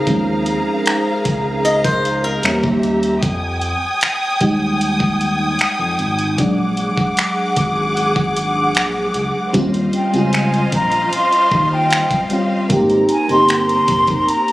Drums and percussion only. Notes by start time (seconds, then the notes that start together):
0.07 kick, closed hi-hat
0.46 closed hi-hat
0.86 finger snap, closed hi-hat
1.25 kick, closed hi-hat
1.66 closed hi-hat
1.84 kick
2.05 closed hi-hat
2.43 finger snap, closed hi-hat
2.63 kick
2.83 closed hi-hat
3.03 closed hi-hat
3.23 kick, closed hi-hat
3.62 closed hi-hat
4.01 finger snap, closed hi-hat
4.41 kick, closed hi-hat
4.81 closed hi-hat
5.00 kick
5.21 closed hi-hat
5.59 finger snap, closed hi-hat
5.99 closed hi-hat
6.19 closed hi-hat
6.38 kick, closed hi-hat
6.77 closed hi-hat
6.98 kick
7.17 finger snap, closed hi-hat
7.56 kick, closed hi-hat
7.97 closed hi-hat
8.16 kick
8.37 closed hi-hat
8.75 finger snap, closed hi-hat
9.14 closed hi-hat
9.54 kick, closed hi-hat
9.74 closed hi-hat
9.93 closed hi-hat
10.14 closed hi-hat
10.33 finger snap, closed hi-hat
10.54 closed hi-hat
10.72 kick, closed hi-hat
10.92 closed hi-hat
11.13 closed hi-hat
11.33 closed hi-hat
11.51 kick
11.91 finger snap, closed hi-hat
12.11 kick, closed hi-hat
12.30 closed hi-hat
12.70 kick, closed hi-hat
12.90 closed hi-hat
13.09 closed hi-hat
13.29 closed hi-hat
13.49 finger snap, closed hi-hat
13.69 closed hi-hat
13.88 kick, closed hi-hat
14.07 kick, closed hi-hat
14.28 closed hi-hat
14.48 closed hi-hat